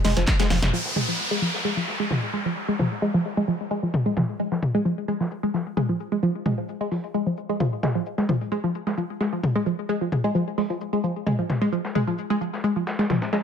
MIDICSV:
0, 0, Header, 1, 5, 480
1, 0, Start_track
1, 0, Key_signature, -4, "minor"
1, 0, Tempo, 458015
1, 768, Time_signature, 4, 2, 24, 8
1, 14076, End_track
2, 0, Start_track
2, 0, Title_t, "Synth arpeggio sound"
2, 0, Program_c, 0, 84
2, 49, Note_on_c, 0, 56, 104
2, 127, Note_off_c, 0, 56, 0
2, 176, Note_on_c, 0, 53, 73
2, 245, Note_off_c, 0, 53, 0
2, 415, Note_on_c, 0, 56, 106
2, 485, Note_off_c, 0, 56, 0
2, 528, Note_on_c, 0, 53, 79
2, 606, Note_off_c, 0, 53, 0
2, 768, Note_on_c, 0, 53, 83
2, 846, Note_off_c, 0, 53, 0
2, 1008, Note_on_c, 0, 56, 99
2, 1086, Note_off_c, 0, 56, 0
2, 1135, Note_on_c, 0, 53, 83
2, 1205, Note_off_c, 0, 53, 0
2, 1374, Note_on_c, 0, 56, 102
2, 1444, Note_off_c, 0, 56, 0
2, 1487, Note_on_c, 0, 53, 76
2, 1566, Note_off_c, 0, 53, 0
2, 1726, Note_on_c, 0, 56, 96
2, 1805, Note_off_c, 0, 56, 0
2, 1854, Note_on_c, 0, 53, 70
2, 1924, Note_off_c, 0, 53, 0
2, 2093, Note_on_c, 0, 56, 94
2, 2164, Note_off_c, 0, 56, 0
2, 2206, Note_on_c, 0, 53, 82
2, 2286, Note_off_c, 0, 53, 0
2, 2447, Note_on_c, 0, 56, 96
2, 2526, Note_off_c, 0, 56, 0
2, 2574, Note_on_c, 0, 53, 75
2, 2644, Note_off_c, 0, 53, 0
2, 2814, Note_on_c, 0, 56, 102
2, 2884, Note_off_c, 0, 56, 0
2, 2926, Note_on_c, 0, 53, 78
2, 3006, Note_off_c, 0, 53, 0
2, 3167, Note_on_c, 0, 56, 101
2, 3246, Note_off_c, 0, 56, 0
2, 3294, Note_on_c, 0, 53, 79
2, 3364, Note_off_c, 0, 53, 0
2, 3534, Note_on_c, 0, 56, 99
2, 3604, Note_off_c, 0, 56, 0
2, 3647, Note_on_c, 0, 53, 77
2, 3726, Note_off_c, 0, 53, 0
2, 3886, Note_on_c, 0, 56, 107
2, 3966, Note_off_c, 0, 56, 0
2, 4013, Note_on_c, 0, 53, 73
2, 4084, Note_off_c, 0, 53, 0
2, 4254, Note_on_c, 0, 56, 100
2, 4324, Note_off_c, 0, 56, 0
2, 4367, Note_on_c, 0, 53, 79
2, 4446, Note_off_c, 0, 53, 0
2, 4607, Note_on_c, 0, 56, 105
2, 4686, Note_off_c, 0, 56, 0
2, 4734, Note_on_c, 0, 53, 69
2, 4804, Note_off_c, 0, 53, 0
2, 4974, Note_on_c, 0, 56, 108
2, 5044, Note_off_c, 0, 56, 0
2, 5086, Note_on_c, 0, 53, 83
2, 5166, Note_off_c, 0, 53, 0
2, 5327, Note_on_c, 0, 56, 102
2, 5406, Note_off_c, 0, 56, 0
2, 5455, Note_on_c, 0, 53, 73
2, 5525, Note_off_c, 0, 53, 0
2, 5693, Note_on_c, 0, 56, 94
2, 5764, Note_off_c, 0, 56, 0
2, 5807, Note_on_c, 0, 53, 74
2, 5886, Note_off_c, 0, 53, 0
2, 6046, Note_on_c, 0, 56, 100
2, 6126, Note_off_c, 0, 56, 0
2, 6173, Note_on_c, 0, 53, 77
2, 6244, Note_off_c, 0, 53, 0
2, 6413, Note_on_c, 0, 56, 97
2, 6484, Note_off_c, 0, 56, 0
2, 6527, Note_on_c, 0, 53, 88
2, 6606, Note_off_c, 0, 53, 0
2, 6767, Note_on_c, 0, 56, 104
2, 6846, Note_off_c, 0, 56, 0
2, 6894, Note_on_c, 0, 53, 77
2, 6964, Note_off_c, 0, 53, 0
2, 7134, Note_on_c, 0, 56, 105
2, 7204, Note_off_c, 0, 56, 0
2, 7247, Note_on_c, 0, 53, 71
2, 7326, Note_off_c, 0, 53, 0
2, 7487, Note_on_c, 0, 56, 94
2, 7566, Note_off_c, 0, 56, 0
2, 7614, Note_on_c, 0, 53, 69
2, 7684, Note_off_c, 0, 53, 0
2, 7854, Note_on_c, 0, 56, 98
2, 7924, Note_off_c, 0, 56, 0
2, 7967, Note_on_c, 0, 53, 82
2, 8046, Note_off_c, 0, 53, 0
2, 8208, Note_on_c, 0, 56, 96
2, 8286, Note_off_c, 0, 56, 0
2, 8335, Note_on_c, 0, 53, 75
2, 8405, Note_off_c, 0, 53, 0
2, 8573, Note_on_c, 0, 56, 97
2, 8644, Note_off_c, 0, 56, 0
2, 8687, Note_on_c, 0, 53, 79
2, 8766, Note_off_c, 0, 53, 0
2, 8926, Note_on_c, 0, 56, 99
2, 9006, Note_off_c, 0, 56, 0
2, 9053, Note_on_c, 0, 53, 80
2, 9124, Note_off_c, 0, 53, 0
2, 9294, Note_on_c, 0, 56, 98
2, 9364, Note_off_c, 0, 56, 0
2, 9406, Note_on_c, 0, 53, 79
2, 9486, Note_off_c, 0, 53, 0
2, 9648, Note_on_c, 0, 56, 101
2, 9726, Note_off_c, 0, 56, 0
2, 9774, Note_on_c, 0, 53, 76
2, 9844, Note_off_c, 0, 53, 0
2, 10014, Note_on_c, 0, 56, 104
2, 10084, Note_off_c, 0, 56, 0
2, 10127, Note_on_c, 0, 53, 76
2, 10206, Note_off_c, 0, 53, 0
2, 10366, Note_on_c, 0, 56, 107
2, 10446, Note_off_c, 0, 56, 0
2, 10493, Note_on_c, 0, 53, 71
2, 10564, Note_off_c, 0, 53, 0
2, 10734, Note_on_c, 0, 56, 107
2, 10804, Note_off_c, 0, 56, 0
2, 10847, Note_on_c, 0, 53, 80
2, 10926, Note_off_c, 0, 53, 0
2, 11086, Note_on_c, 0, 56, 95
2, 11166, Note_off_c, 0, 56, 0
2, 11213, Note_on_c, 0, 53, 72
2, 11284, Note_off_c, 0, 53, 0
2, 11454, Note_on_c, 0, 56, 94
2, 11524, Note_off_c, 0, 56, 0
2, 11567, Note_on_c, 0, 53, 78
2, 11646, Note_off_c, 0, 53, 0
2, 11806, Note_on_c, 0, 56, 102
2, 11885, Note_off_c, 0, 56, 0
2, 11934, Note_on_c, 0, 53, 75
2, 12004, Note_off_c, 0, 53, 0
2, 12173, Note_on_c, 0, 56, 103
2, 12244, Note_off_c, 0, 56, 0
2, 12288, Note_on_c, 0, 53, 80
2, 12366, Note_off_c, 0, 53, 0
2, 12527, Note_on_c, 0, 56, 107
2, 12606, Note_off_c, 0, 56, 0
2, 12653, Note_on_c, 0, 53, 84
2, 12724, Note_off_c, 0, 53, 0
2, 12893, Note_on_c, 0, 56, 110
2, 12964, Note_off_c, 0, 56, 0
2, 13006, Note_on_c, 0, 53, 74
2, 13086, Note_off_c, 0, 53, 0
2, 13246, Note_on_c, 0, 56, 97
2, 13325, Note_off_c, 0, 56, 0
2, 13374, Note_on_c, 0, 53, 72
2, 13444, Note_off_c, 0, 53, 0
2, 13613, Note_on_c, 0, 56, 102
2, 13684, Note_off_c, 0, 56, 0
2, 13727, Note_on_c, 0, 53, 87
2, 13806, Note_off_c, 0, 53, 0
2, 13967, Note_on_c, 0, 56, 101
2, 14046, Note_off_c, 0, 56, 0
2, 14076, End_track
3, 0, Start_track
3, 0, Title_t, "Detuned saw bass"
3, 0, Program_c, 1, 39
3, 47, Note_on_c, 1, 29, 93
3, 150, Note_off_c, 1, 29, 0
3, 175, Note_on_c, 1, 29, 80
3, 267, Note_off_c, 1, 29, 0
3, 528, Note_on_c, 1, 29, 99
3, 631, Note_off_c, 1, 29, 0
3, 655, Note_on_c, 1, 29, 81
3, 746, Note_off_c, 1, 29, 0
3, 14076, End_track
4, 0, Start_track
4, 0, Title_t, "Downlifter"
4, 0, Program_c, 2, 103
4, 767, Note_on_c, 2, 60, 71
4, 4608, Note_off_c, 2, 60, 0
4, 14076, End_track
5, 0, Start_track
5, 0, Title_t, "Drums"
5, 47, Note_on_c, 9, 38, 66
5, 47, Note_on_c, 9, 46, 106
5, 47, Note_on_c, 9, 47, 85
5, 49, Note_on_c, 9, 82, 70
5, 152, Note_off_c, 9, 38, 0
5, 152, Note_off_c, 9, 46, 0
5, 152, Note_off_c, 9, 47, 0
5, 154, Note_off_c, 9, 82, 0
5, 175, Note_on_c, 9, 38, 56
5, 175, Note_on_c, 9, 42, 64
5, 279, Note_off_c, 9, 38, 0
5, 279, Note_off_c, 9, 42, 0
5, 287, Note_on_c, 9, 38, 77
5, 287, Note_on_c, 9, 39, 127
5, 287, Note_on_c, 9, 42, 69
5, 288, Note_off_c, 9, 38, 0
5, 288, Note_on_c, 9, 36, 107
5, 288, Note_on_c, 9, 38, 98
5, 288, Note_on_c, 9, 82, 80
5, 392, Note_off_c, 9, 39, 0
5, 392, Note_off_c, 9, 42, 0
5, 393, Note_off_c, 9, 36, 0
5, 393, Note_off_c, 9, 38, 0
5, 393, Note_off_c, 9, 82, 0
5, 415, Note_on_c, 9, 38, 111
5, 415, Note_on_c, 9, 42, 69
5, 415, Note_on_c, 9, 82, 82
5, 519, Note_off_c, 9, 42, 0
5, 520, Note_off_c, 9, 38, 0
5, 520, Note_off_c, 9, 82, 0
5, 528, Note_on_c, 9, 38, 102
5, 528, Note_on_c, 9, 46, 99
5, 528, Note_on_c, 9, 47, 80
5, 528, Note_on_c, 9, 82, 76
5, 632, Note_off_c, 9, 46, 0
5, 632, Note_off_c, 9, 47, 0
5, 633, Note_off_c, 9, 38, 0
5, 633, Note_off_c, 9, 82, 0
5, 654, Note_on_c, 9, 38, 88
5, 654, Note_on_c, 9, 42, 65
5, 654, Note_on_c, 9, 47, 90
5, 759, Note_off_c, 9, 38, 0
5, 759, Note_off_c, 9, 42, 0
5, 759, Note_off_c, 9, 47, 0
5, 895, Note_on_c, 9, 38, 54
5, 1000, Note_off_c, 9, 38, 0
5, 1007, Note_on_c, 9, 47, 77
5, 1112, Note_off_c, 9, 47, 0
5, 1135, Note_on_c, 9, 42, 44
5, 1240, Note_off_c, 9, 42, 0
5, 1615, Note_on_c, 9, 38, 40
5, 1719, Note_off_c, 9, 38, 0
5, 1967, Note_on_c, 9, 38, 36
5, 2072, Note_off_c, 9, 38, 0
5, 2207, Note_on_c, 9, 47, 85
5, 2312, Note_off_c, 9, 47, 0
5, 2687, Note_on_c, 9, 82, 88
5, 2792, Note_off_c, 9, 82, 0
5, 2927, Note_on_c, 9, 47, 78
5, 2927, Note_on_c, 9, 82, 65
5, 3032, Note_off_c, 9, 47, 0
5, 3032, Note_off_c, 9, 82, 0
5, 3167, Note_on_c, 9, 82, 88
5, 3272, Note_off_c, 9, 82, 0
5, 3407, Note_on_c, 9, 46, 78
5, 3512, Note_off_c, 9, 46, 0
5, 3534, Note_on_c, 9, 42, 44
5, 3639, Note_off_c, 9, 42, 0
5, 3647, Note_on_c, 9, 82, 82
5, 3752, Note_off_c, 9, 82, 0
5, 3888, Note_on_c, 9, 82, 66
5, 3992, Note_off_c, 9, 82, 0
5, 4127, Note_on_c, 9, 47, 91
5, 4128, Note_on_c, 9, 82, 80
5, 4232, Note_off_c, 9, 47, 0
5, 4232, Note_off_c, 9, 82, 0
5, 4367, Note_on_c, 9, 47, 82
5, 4368, Note_on_c, 9, 38, 55
5, 4368, Note_on_c, 9, 82, 62
5, 4472, Note_off_c, 9, 38, 0
5, 4472, Note_off_c, 9, 47, 0
5, 4472, Note_off_c, 9, 82, 0
5, 4607, Note_on_c, 9, 82, 87
5, 4712, Note_off_c, 9, 82, 0
5, 4735, Note_on_c, 9, 38, 55
5, 4839, Note_off_c, 9, 38, 0
5, 4848, Note_on_c, 9, 47, 79
5, 4848, Note_on_c, 9, 82, 65
5, 4952, Note_off_c, 9, 47, 0
5, 4953, Note_off_c, 9, 82, 0
5, 4975, Note_on_c, 9, 42, 44
5, 5080, Note_off_c, 9, 42, 0
5, 5088, Note_on_c, 9, 82, 83
5, 5192, Note_off_c, 9, 82, 0
5, 5327, Note_on_c, 9, 82, 66
5, 5432, Note_off_c, 9, 82, 0
5, 5455, Note_on_c, 9, 38, 39
5, 5560, Note_off_c, 9, 38, 0
5, 5567, Note_on_c, 9, 82, 79
5, 5672, Note_off_c, 9, 82, 0
5, 5808, Note_on_c, 9, 38, 37
5, 5808, Note_on_c, 9, 82, 64
5, 5913, Note_off_c, 9, 38, 0
5, 5913, Note_off_c, 9, 82, 0
5, 6047, Note_on_c, 9, 82, 84
5, 6048, Note_on_c, 9, 47, 89
5, 6152, Note_off_c, 9, 82, 0
5, 6153, Note_off_c, 9, 47, 0
5, 6287, Note_on_c, 9, 82, 65
5, 6392, Note_off_c, 9, 82, 0
5, 6527, Note_on_c, 9, 82, 84
5, 6632, Note_off_c, 9, 82, 0
5, 6767, Note_on_c, 9, 47, 82
5, 6767, Note_on_c, 9, 82, 69
5, 6872, Note_off_c, 9, 47, 0
5, 6872, Note_off_c, 9, 82, 0
5, 7007, Note_on_c, 9, 82, 85
5, 7112, Note_off_c, 9, 82, 0
5, 7247, Note_on_c, 9, 46, 81
5, 7352, Note_off_c, 9, 46, 0
5, 7375, Note_on_c, 9, 42, 44
5, 7479, Note_off_c, 9, 42, 0
5, 7488, Note_on_c, 9, 82, 82
5, 7592, Note_off_c, 9, 82, 0
5, 7727, Note_on_c, 9, 82, 66
5, 7832, Note_off_c, 9, 82, 0
5, 7968, Note_on_c, 9, 47, 92
5, 7968, Note_on_c, 9, 82, 82
5, 8072, Note_off_c, 9, 82, 0
5, 8073, Note_off_c, 9, 47, 0
5, 8207, Note_on_c, 9, 47, 89
5, 8208, Note_on_c, 9, 38, 103
5, 8312, Note_off_c, 9, 47, 0
5, 8313, Note_off_c, 9, 38, 0
5, 8448, Note_on_c, 9, 82, 91
5, 8553, Note_off_c, 9, 82, 0
5, 8575, Note_on_c, 9, 38, 55
5, 8680, Note_off_c, 9, 38, 0
5, 8688, Note_on_c, 9, 47, 89
5, 8688, Note_on_c, 9, 82, 66
5, 8793, Note_off_c, 9, 47, 0
5, 8793, Note_off_c, 9, 82, 0
5, 8815, Note_on_c, 9, 42, 44
5, 8920, Note_off_c, 9, 42, 0
5, 8928, Note_on_c, 9, 82, 83
5, 9033, Note_off_c, 9, 82, 0
5, 9169, Note_on_c, 9, 82, 65
5, 9274, Note_off_c, 9, 82, 0
5, 9295, Note_on_c, 9, 38, 40
5, 9400, Note_off_c, 9, 38, 0
5, 9408, Note_on_c, 9, 82, 83
5, 9513, Note_off_c, 9, 82, 0
5, 9648, Note_on_c, 9, 38, 38
5, 9648, Note_on_c, 9, 82, 62
5, 9753, Note_off_c, 9, 38, 0
5, 9753, Note_off_c, 9, 82, 0
5, 9888, Note_on_c, 9, 47, 97
5, 9888, Note_on_c, 9, 82, 83
5, 9992, Note_off_c, 9, 47, 0
5, 9993, Note_off_c, 9, 82, 0
5, 10128, Note_on_c, 9, 82, 67
5, 10233, Note_off_c, 9, 82, 0
5, 10368, Note_on_c, 9, 82, 87
5, 10472, Note_off_c, 9, 82, 0
5, 10608, Note_on_c, 9, 47, 84
5, 10608, Note_on_c, 9, 82, 63
5, 10713, Note_off_c, 9, 47, 0
5, 10713, Note_off_c, 9, 82, 0
5, 10848, Note_on_c, 9, 82, 86
5, 10953, Note_off_c, 9, 82, 0
5, 11089, Note_on_c, 9, 46, 79
5, 11193, Note_off_c, 9, 46, 0
5, 11215, Note_on_c, 9, 42, 43
5, 11320, Note_off_c, 9, 42, 0
5, 11328, Note_on_c, 9, 82, 85
5, 11433, Note_off_c, 9, 82, 0
5, 11569, Note_on_c, 9, 82, 63
5, 11673, Note_off_c, 9, 82, 0
5, 11808, Note_on_c, 9, 47, 91
5, 11808, Note_on_c, 9, 82, 85
5, 11913, Note_off_c, 9, 47, 0
5, 11913, Note_off_c, 9, 82, 0
5, 12048, Note_on_c, 9, 47, 81
5, 12049, Note_on_c, 9, 38, 55
5, 12049, Note_on_c, 9, 82, 68
5, 12153, Note_off_c, 9, 47, 0
5, 12154, Note_off_c, 9, 38, 0
5, 12154, Note_off_c, 9, 82, 0
5, 12288, Note_on_c, 9, 82, 94
5, 12393, Note_off_c, 9, 82, 0
5, 12415, Note_on_c, 9, 38, 56
5, 12520, Note_off_c, 9, 38, 0
5, 12528, Note_on_c, 9, 47, 79
5, 12529, Note_on_c, 9, 82, 68
5, 12633, Note_off_c, 9, 47, 0
5, 12633, Note_off_c, 9, 82, 0
5, 12655, Note_on_c, 9, 42, 45
5, 12760, Note_off_c, 9, 42, 0
5, 12768, Note_on_c, 9, 82, 89
5, 12873, Note_off_c, 9, 82, 0
5, 13008, Note_on_c, 9, 82, 67
5, 13113, Note_off_c, 9, 82, 0
5, 13135, Note_on_c, 9, 38, 42
5, 13240, Note_off_c, 9, 38, 0
5, 13248, Note_on_c, 9, 82, 87
5, 13352, Note_off_c, 9, 82, 0
5, 13488, Note_on_c, 9, 38, 102
5, 13488, Note_on_c, 9, 82, 76
5, 13592, Note_off_c, 9, 38, 0
5, 13592, Note_off_c, 9, 82, 0
5, 13614, Note_on_c, 9, 38, 101
5, 13614, Note_on_c, 9, 82, 80
5, 13719, Note_off_c, 9, 38, 0
5, 13719, Note_off_c, 9, 82, 0
5, 13728, Note_on_c, 9, 38, 99
5, 13728, Note_on_c, 9, 47, 87
5, 13728, Note_on_c, 9, 82, 78
5, 13832, Note_off_c, 9, 38, 0
5, 13832, Note_off_c, 9, 82, 0
5, 13833, Note_off_c, 9, 47, 0
5, 13854, Note_on_c, 9, 38, 105
5, 13854, Note_on_c, 9, 82, 79
5, 13959, Note_off_c, 9, 38, 0
5, 13959, Note_off_c, 9, 82, 0
5, 13968, Note_on_c, 9, 38, 103
5, 13968, Note_on_c, 9, 82, 74
5, 14073, Note_off_c, 9, 38, 0
5, 14073, Note_off_c, 9, 82, 0
5, 14076, End_track
0, 0, End_of_file